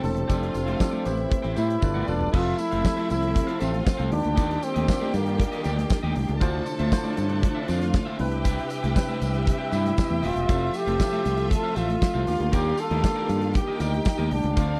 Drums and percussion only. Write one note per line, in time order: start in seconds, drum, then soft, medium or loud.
0.04 open hi-hat medium
0.04 tambourine soft
0.04 high conga medium
0.04 low conga medium
0.17 closed hi-hat soft
0.30 kick loud
0.30 closed hi-hat medium
0.30 tambourine soft
0.43 closed hi-hat soft
0.54 closed hi-hat medium
0.54 tambourine soft
0.54 muted conga soft
0.68 closed hi-hat soft
0.68 high conga medium
0.80 kick loud
0.80 snare loud
0.80 tambourine medium
0.93 high conga medium
1.05 closed hi-hat medium
1.05 tambourine medium
1.05 low conga medium
1.17 closed hi-hat soft
1.31 kick loud
1.31 closed hi-hat medium
1.31 muted conga soft
1.31 low conga medium
1.44 closed hi-hat soft
1.56 closed hi-hat medium
1.56 tambourine medium
1.56 muted conga soft
1.70 closed hi-hat soft
1.82 kick loud
1.82 high tom medium
1.82 tambourine medium
1.82 muted conga soft
1.95 mid tom medium
1.95 high conga medium
2.08 mid tom medium
2.08 tambourine soft
2.08 high conga medium
2.08 low conga medium
2.21 floor tom medium
2.34 kick loud
2.34 crash loud
2.34 tambourine soft
2.58 closed hi-hat medium
2.58 tambourine medium
2.58 muted conga soft
2.72 closed hi-hat soft
2.72 high conga medium
2.85 kick loud
2.85 snare loud
2.85 tambourine medium
2.97 closed hi-hat soft
2.97 high conga medium
3.10 closed hi-hat medium
3.10 tambourine medium
3.10 muted conga soft
3.10 low conga medium
3.22 closed hi-hat soft
3.35 kick loud
3.35 closed hi-hat medium
3.35 tambourine soft
3.35 muted conga soft
3.35 low conga medium
3.48 closed hi-hat soft
3.60 closed hi-hat medium
3.60 tambourine medium
3.60 muted conga soft
3.74 closed hi-hat soft
3.74 high conga medium
3.87 kick loud
3.87 snare loud
3.87 tambourine medium
4.00 closed hi-hat soft
4.00 high conga medium
4.12 open hi-hat medium
4.12 muted conga soft
4.12 high conga medium
4.24 closed hi-hat soft
4.37 kick loud
4.37 closed hi-hat medium
4.37 tambourine medium
4.51 closed hi-hat soft
4.63 closed hi-hat medium
4.63 tambourine medium
4.63 muted conga soft
4.76 closed hi-hat medium
4.76 high conga medium
4.88 kick loud
4.88 snare loud
4.88 tambourine loud
4.88 muted conga soft
5.01 high conga medium
5.14 closed hi-hat medium
5.14 tambourine medium
5.14 muted conga soft
5.14 low conga medium
5.26 closed hi-hat soft
5.38 kick loud
5.38 closed hi-hat medium
5.38 low conga medium
5.53 closed hi-hat soft
5.64 closed hi-hat medium
5.64 tambourine medium
5.64 muted conga soft
5.78 snare soft
5.78 closed hi-hat medium
5.78 high conga medium
5.90 kick loud
5.90 snare loud
5.90 tambourine medium
5.90 muted conga soft
6.04 high conga medium
6.15 open hi-hat medium
6.15 muted conga soft
6.15 high conga medium
6.28 closed hi-hat soft
6.41 kick loud
6.41 closed hi-hat medium
6.41 tambourine medium
6.66 closed hi-hat medium
6.66 tambourine soft
6.66 muted conga soft
6.79 closed hi-hat soft
6.79 high conga medium
6.92 kick loud
6.92 snare loud
6.92 tambourine medium
7.05 closed hi-hat soft
7.05 high conga medium
7.17 closed hi-hat medium
7.17 tambourine medium
7.17 muted conga soft
7.17 low conga medium
7.29 closed hi-hat soft
7.42 kick loud
7.42 closed hi-hat medium
7.42 muted conga soft
7.42 low conga medium
7.68 closed hi-hat medium
7.68 tambourine medium
7.68 muted conga soft
7.82 snare soft
7.82 closed hi-hat soft
7.82 high conga medium
7.94 kick loud
7.94 snare loud
7.94 tambourine medium
8.08 high conga medium
8.19 open hi-hat medium
8.19 high conga medium
8.32 closed hi-hat soft
8.45 kick loud
8.45 closed hi-hat medium
8.45 tambourine medium
8.45 muted conga soft
8.59 closed hi-hat soft
8.70 closed hi-hat medium
8.70 tambourine medium
8.84 closed hi-hat medium
8.84 high conga medium
8.96 kick loud
8.96 snare loud
8.96 tambourine loud
9.08 closed hi-hat soft
9.08 high conga medium
9.21 closed hi-hat medium
9.21 tambourine medium
9.21 low conga medium
9.34 closed hi-hat soft
9.46 kick loud
9.46 closed hi-hat medium
9.46 tambourine soft
9.46 low conga medium
9.72 closed hi-hat medium
9.72 tambourine medium
9.72 muted conga soft
9.84 snare soft
9.84 closed hi-hat soft
9.84 high conga medium
9.97 kick loud
9.97 snare loud
9.97 tambourine medium
9.97 muted conga soft
10.10 high conga medium
10.23 open hi-hat medium
10.23 muted conga soft
10.23 high conga medium
10.23 low conga medium
10.36 closed hi-hat soft
10.49 kick loud
10.49 closed hi-hat medium
10.49 tambourine medium
10.74 closed hi-hat medium
10.74 tambourine medium
10.87 closed hi-hat medium
10.87 high conga loud
11.00 kick loud
11.00 snare loud
11.00 tambourine loud
11.12 closed hi-hat soft
11.12 high conga medium
11.25 closed hi-hat medium
11.25 tambourine medium
11.25 low conga medium
11.37 closed hi-hat soft
11.50 kick loud
11.50 closed hi-hat medium
11.50 tambourine soft
11.50 muted conga soft
11.50 low conga medium
11.76 closed hi-hat medium
11.76 tambourine medium
11.76 muted conga soft
11.89 closed hi-hat soft
11.89 high conga medium
12.02 kick loud
12.02 snare loud
12.02 tambourine medium
12.15 high conga medium
12.27 open hi-hat medium
12.27 tambourine soft
12.27 high conga medium
12.40 closed hi-hat soft
12.53 kick loud
12.53 closed hi-hat medium
12.53 tambourine medium
12.78 closed hi-hat medium
12.78 tambourine medium
12.91 closed hi-hat soft
12.91 high conga medium
13.04 kick loud
13.04 snare loud
13.04 tambourine medium
13.16 high conga medium
13.29 closed hi-hat medium
13.29 tambourine medium
13.29 low conga medium
13.42 closed hi-hat soft
13.54 kick loud
13.54 closed hi-hat medium
13.54 tambourine soft
13.54 low conga medium
13.80 closed hi-hat medium
13.80 tambourine medium
13.93 closed hi-hat soft
13.93 high conga medium
14.05 kick loud
14.05 snare loud
14.05 tambourine medium
14.05 muted conga soft
14.19 closed hi-hat soft
14.19 high conga medium
14.31 open hi-hat medium
14.31 muted conga soft
14.31 high conga medium
14.44 closed hi-hat soft
14.57 kick loud
14.57 closed hi-hat medium
14.57 tambourine medium